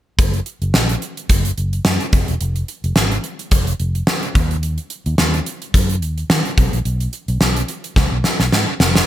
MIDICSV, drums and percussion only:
0, 0, Header, 1, 2, 480
1, 0, Start_track
1, 0, Tempo, 555556
1, 160, Time_signature, 4, 2, 24, 8
1, 7833, End_track
2, 0, Start_track
2, 0, Title_t, "Drums"
2, 161, Note_on_c, 9, 36, 93
2, 161, Note_on_c, 9, 42, 79
2, 248, Note_off_c, 9, 36, 0
2, 248, Note_off_c, 9, 42, 0
2, 290, Note_on_c, 9, 42, 49
2, 376, Note_off_c, 9, 42, 0
2, 397, Note_on_c, 9, 42, 62
2, 484, Note_off_c, 9, 42, 0
2, 533, Note_on_c, 9, 42, 45
2, 620, Note_off_c, 9, 42, 0
2, 638, Note_on_c, 9, 38, 79
2, 725, Note_off_c, 9, 38, 0
2, 771, Note_on_c, 9, 42, 49
2, 858, Note_off_c, 9, 42, 0
2, 881, Note_on_c, 9, 42, 58
2, 967, Note_off_c, 9, 42, 0
2, 1014, Note_on_c, 9, 42, 53
2, 1100, Note_off_c, 9, 42, 0
2, 1118, Note_on_c, 9, 42, 76
2, 1120, Note_on_c, 9, 36, 72
2, 1204, Note_off_c, 9, 42, 0
2, 1206, Note_off_c, 9, 36, 0
2, 1252, Note_on_c, 9, 42, 47
2, 1338, Note_off_c, 9, 42, 0
2, 1361, Note_on_c, 9, 42, 57
2, 1448, Note_off_c, 9, 42, 0
2, 1494, Note_on_c, 9, 42, 48
2, 1581, Note_off_c, 9, 42, 0
2, 1596, Note_on_c, 9, 38, 105
2, 1682, Note_off_c, 9, 38, 0
2, 1731, Note_on_c, 9, 42, 48
2, 1817, Note_off_c, 9, 42, 0
2, 1838, Note_on_c, 9, 42, 68
2, 1839, Note_on_c, 9, 36, 90
2, 1924, Note_off_c, 9, 42, 0
2, 1926, Note_off_c, 9, 36, 0
2, 1970, Note_on_c, 9, 42, 46
2, 2057, Note_off_c, 9, 42, 0
2, 2079, Note_on_c, 9, 42, 78
2, 2165, Note_off_c, 9, 42, 0
2, 2208, Note_on_c, 9, 42, 46
2, 2295, Note_off_c, 9, 42, 0
2, 2319, Note_on_c, 9, 42, 61
2, 2405, Note_off_c, 9, 42, 0
2, 2453, Note_on_c, 9, 42, 47
2, 2540, Note_off_c, 9, 42, 0
2, 2555, Note_on_c, 9, 38, 83
2, 2641, Note_off_c, 9, 38, 0
2, 2692, Note_on_c, 9, 42, 49
2, 2778, Note_off_c, 9, 42, 0
2, 2797, Note_on_c, 9, 42, 59
2, 2884, Note_off_c, 9, 42, 0
2, 2931, Note_on_c, 9, 42, 55
2, 3017, Note_off_c, 9, 42, 0
2, 3035, Note_on_c, 9, 42, 74
2, 3038, Note_on_c, 9, 36, 69
2, 3121, Note_off_c, 9, 42, 0
2, 3125, Note_off_c, 9, 36, 0
2, 3172, Note_on_c, 9, 42, 45
2, 3258, Note_off_c, 9, 42, 0
2, 3279, Note_on_c, 9, 42, 55
2, 3366, Note_off_c, 9, 42, 0
2, 3413, Note_on_c, 9, 42, 45
2, 3499, Note_off_c, 9, 42, 0
2, 3517, Note_on_c, 9, 38, 102
2, 3603, Note_off_c, 9, 38, 0
2, 3653, Note_on_c, 9, 42, 47
2, 3739, Note_off_c, 9, 42, 0
2, 3760, Note_on_c, 9, 36, 91
2, 3761, Note_on_c, 9, 42, 67
2, 3847, Note_off_c, 9, 36, 0
2, 3847, Note_off_c, 9, 42, 0
2, 3895, Note_on_c, 9, 42, 44
2, 3982, Note_off_c, 9, 42, 0
2, 4000, Note_on_c, 9, 42, 80
2, 4086, Note_off_c, 9, 42, 0
2, 4127, Note_on_c, 9, 42, 47
2, 4214, Note_off_c, 9, 42, 0
2, 4234, Note_on_c, 9, 42, 66
2, 4321, Note_off_c, 9, 42, 0
2, 4371, Note_on_c, 9, 42, 46
2, 4457, Note_off_c, 9, 42, 0
2, 4477, Note_on_c, 9, 38, 83
2, 4563, Note_off_c, 9, 38, 0
2, 4611, Note_on_c, 9, 42, 51
2, 4697, Note_off_c, 9, 42, 0
2, 4721, Note_on_c, 9, 42, 61
2, 4807, Note_off_c, 9, 42, 0
2, 4854, Note_on_c, 9, 42, 56
2, 4940, Note_off_c, 9, 42, 0
2, 4961, Note_on_c, 9, 36, 75
2, 4962, Note_on_c, 9, 42, 78
2, 5047, Note_off_c, 9, 36, 0
2, 5048, Note_off_c, 9, 42, 0
2, 5092, Note_on_c, 9, 42, 50
2, 5178, Note_off_c, 9, 42, 0
2, 5204, Note_on_c, 9, 42, 54
2, 5291, Note_off_c, 9, 42, 0
2, 5336, Note_on_c, 9, 42, 47
2, 5422, Note_off_c, 9, 42, 0
2, 5442, Note_on_c, 9, 38, 101
2, 5528, Note_off_c, 9, 38, 0
2, 5576, Note_on_c, 9, 42, 46
2, 5663, Note_off_c, 9, 42, 0
2, 5682, Note_on_c, 9, 36, 87
2, 5684, Note_on_c, 9, 42, 67
2, 5768, Note_off_c, 9, 36, 0
2, 5771, Note_off_c, 9, 42, 0
2, 5816, Note_on_c, 9, 42, 46
2, 5902, Note_off_c, 9, 42, 0
2, 5921, Note_on_c, 9, 42, 74
2, 6008, Note_off_c, 9, 42, 0
2, 6052, Note_on_c, 9, 42, 50
2, 6138, Note_off_c, 9, 42, 0
2, 6159, Note_on_c, 9, 42, 63
2, 6245, Note_off_c, 9, 42, 0
2, 6292, Note_on_c, 9, 42, 46
2, 6379, Note_off_c, 9, 42, 0
2, 6399, Note_on_c, 9, 38, 79
2, 6485, Note_off_c, 9, 38, 0
2, 6534, Note_on_c, 9, 42, 51
2, 6621, Note_off_c, 9, 42, 0
2, 6639, Note_on_c, 9, 42, 61
2, 6726, Note_off_c, 9, 42, 0
2, 6774, Note_on_c, 9, 42, 56
2, 6861, Note_off_c, 9, 42, 0
2, 6879, Note_on_c, 9, 36, 75
2, 6880, Note_on_c, 9, 38, 48
2, 6966, Note_off_c, 9, 36, 0
2, 6966, Note_off_c, 9, 38, 0
2, 7120, Note_on_c, 9, 38, 60
2, 7206, Note_off_c, 9, 38, 0
2, 7254, Note_on_c, 9, 38, 53
2, 7341, Note_off_c, 9, 38, 0
2, 7365, Note_on_c, 9, 38, 69
2, 7452, Note_off_c, 9, 38, 0
2, 7603, Note_on_c, 9, 38, 81
2, 7690, Note_off_c, 9, 38, 0
2, 7737, Note_on_c, 9, 38, 76
2, 7823, Note_off_c, 9, 38, 0
2, 7833, End_track
0, 0, End_of_file